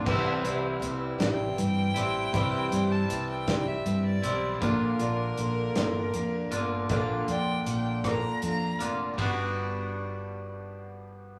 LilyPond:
<<
  \new Staff \with { instrumentName = "Fiddle" } { \time 6/8 \key c \lydian \tempo 4. = 53 r4. g''4.~ | g''8. a''8 g''8 e''8 d''8. | bes'2. | r8 g''8 g''8 bes''8 bes''8 r8 |
r2. | }
  \new Staff \with { instrumentName = "Steel-string acoustic guitar" } { \time 6/8 \key c \lydian <c e g c' e'>8 <g c' e'>8 <e g c' e'>8 <c e g c' e'>8 <e g c' e'>8 <g c' e'>8 | <c e g c' e'>8 <g c' e'>8 <e g c' e'>8 <c e g c' e'>8 <e g c' e'>8 <g c' e'>8 | <bes, d bes d' f'>8 <bes d' f'>8 <d bes d' f'>8 <bes, d bes d' f'>8 <d bes d' f'>8 <bes d' f'>8 | <bes, d bes d' f'>8 <bes d' f'>8 <d bes d' f'>8 <bes, d bes d' f'>8 <d bes d' f'>8 <bes d' f'>8 |
<g b d' fis'>2. | }
  \new Staff \with { instrumentName = "Clean electric guitar" } { \time 6/8 \key c \lydian <c e g c' e'>2~ <c e g c' e'>8 <c e g c' e'>8 | <c e g c' e'>2~ <c e g c' e'>8 <c e g c' e'>8 | <bes, d bes d' f'>2~ <bes, d bes d' f'>8 <bes, d bes d' f'>8 | <bes, d bes d' f'>2~ <bes, d bes d' f'>8 <bes, d bes d' f'>8 |
<g b d' fis'>2. | }
  \new Staff \with { instrumentName = "Picked electric bass" } { \clef bass \time 6/8 \key c \lydian c,8 c,8 c,8 a,,8 g,8 a,,8 | c,8 g,8 c,4 g,8 b,,8 | bes,,8 bes,,8 bes,,8 g,,8 f,8 g,,8 | bes,,8 f,8 bes,,4 f,8 f,,8 |
g,,2. | }
  \new DrumStaff \with { instrumentName = "Drums" } \drummode { \time 6/8 <cymc bd>8 hh8 hh8 <hh sn>8 hh8 hh8 | <hh bd>8 hh8 hh8 <hh bd sn>8 hh8 hh8 | <hh bd>8 hh8 hh8 <hh sn>8 hh8 hh8 | <hh bd>8 hh8 hh8 <hh bd ss>8 hh8 hh8 |
<bd cymr>4. r4. | }
>>